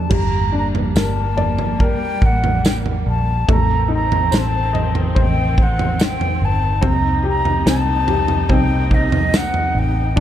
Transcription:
Already playing: F#3 A3 D4 A4 A5
0.09 G1 G3 A#3, kick, floor tom, crash
0.15 A#5
0.52 D4
0.58 A#5
0.75 floor tom
0.95 G1 A#4, snare, tambourine
1.00 A5
1.37 D5, floor tom
1.58 floor tom
1.80 A#4 G5, kick
2.22 A1 F#5, kick
2.44 floor tom
2.65 G5, snare, tambourine
2.86 floor tom
3.06 A#1 A5
3.48 A1 D#3 A3 C4 A#5, kick, floor tom
3.88 D#4
3.94 A#5
4.12 floor tom
4.31 A1 C5, snare, tambourine
4.38 A5
4.73 D#5, floor tom
4.95 floor tom
5.15 A1 C5, kick, floor tom
5.20 G5
5.58 kick
5.62 F#5
5.79 floor tom
6.00 snare, tambourine
6.05 G5
6.21 floor tom
6.41 G1 A5
6.81 C2 C3 A#3 C4 D#4, kick, floor tom
6.87 A#5
7.23 G4
7.28 A#5
7.45 floor tom
7.66 C2 C4 A5, snare, tambourine
8.07 G4, floor tom
8.28 floor tom
8.49 C2 C4 G5, kick, floor tom
8.91 D#5, kick
9.12 floor tom
9.34 F#5, snare, tambourine
9.54 floor tom
9.75 A1 G5
10.15 D2 D3 F#3 A3 D4, kick, floor tom

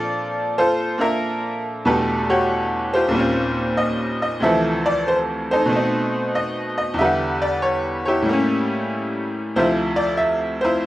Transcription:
Already playing: A#2 F3 C4 D4 F4 A4 D5
0.58 F4 A4 C5
0.98 A#3 D4 F4 A#4 E5
1.85 E2 B2 G3 A3 D4 G4 A4 B4
2.30 F#4 G4 C#5
2.94 F4 G4 C5
3.09 D#2 A#2
3.13 G3 C4
3.17 C#4 F4
3.77 D#5
4.22 D#5
4.40 D2 C3 F3 A4 C5 E5
4.46 E3
4.86 D5
5.08 C5
5.51 D#4 A4 C5
5.66 B2 A3
5.73 C4 D#4
6.35 D#5
6.78 D#5
6.94 E2 D3
6.99 G3 G4 B4 E5
7.04 F#5
7.42 D5
7.62 C#5
8.05 E4 G4 C#5
8.22 A2 G3
8.29 A#3 C#4
9.56 D2 C3 F3 E4 F4 C5 E5
9.96 D5
10.17 E5
10.61 E4 F4 C5

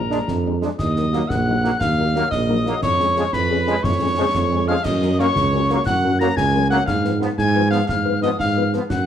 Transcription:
Already playing: A#1 A#4 A#5
0.10 F3 G#3 D4, snare
0.28 F2, concert bass drum, snare
0.46 F3 G#3 D4
0.62 F3 G#3 D4, snare
0.78 D#2 D#5 D#6, concert bass drum, snare, crash
0.96 F#3 A#3 D#4, snare
1.12 F#3 A#3 D#4, snare
1.28 A#1 F#5 F#6, concert bass drum, snare
1.48 F#3 A#3 D#4
1.63 F#3 A#3 D#4, snare
1.80 D#2 F5 F6, concert bass drum, snare
1.99 F#3 A#3 D#4
2.15 F#3 A#3 D#4, snare
2.31 A#1 D#5 D#6, concert bass drum, snare
2.49 F#3 A#3 D#4
2.66 F#3 A#3 D#4, snare
2.82 F2 C#5 C#6, concert bass drum, snare, crash
3.00 G#3 C#4 G#4, snare
3.16 F3 G#3 C#4 G#4, snare
3.32 F2 B4 B5, concert bass drum, snare
3.51 G#3 C#4 G#4
3.67 F3 G#3 C#4 G#4, snare
3.83 F2 C#5 C#6, concert bass drum, snare
4.01 G#3 C#4 G#4
4.16 F3 G#3 C#4 G#4
4.34 F2, concert bass drum, snare
4.52 G#3 C#4 G#4
4.67 F3 G#3 C#4 G#4 F5 F6
4.84 F#2 D#5 D#6, concert bass drum, snare, crash
5.02 F#3 C#4 A#4, snare
5.18 F#3 A#3 C#4 A#4 C#5 C#6, snare
5.35 C#2, concert bass drum, snare
5.53 F#3 C#4 A#4
5.69 F#3 A#3 C#4 A#4, snare
5.85 F#2 F#5 F#6, concert bass drum, snare
6.04 F#3 C#4 A#4
6.19 F#3 A#3 C#4 A#4 A#5 A#6, snare
6.37 C#2 G#5 G#6, concert bass drum, snare
6.54 F#3 C#4 A#4
6.70 F#3 A#3 C#4 A#4 F#5 F#6, snare
6.86 G#2 F5 F6, concert bass drum, snare, crash
7.04 F3 B3 B4, snare
7.20 F3 B3 B4, snare
7.38 G#2 G#5 G#6, concert bass drum, snare
7.55 F3 B3 B4
7.70 F3 B3 B4 F5 F6, snare
7.87 G#2 F5 F6, concert bass drum, snare
8.06 F3 B3 B4
8.22 F3 B3 B4 D#5 D#6, snare
8.39 G#2 F5 F6, concert bass drum, snare
8.56 F3 B3 B4
8.73 F3 B3 B4, snare
8.90 F#2 F#5 F#6, concert bass drum, snare, crash

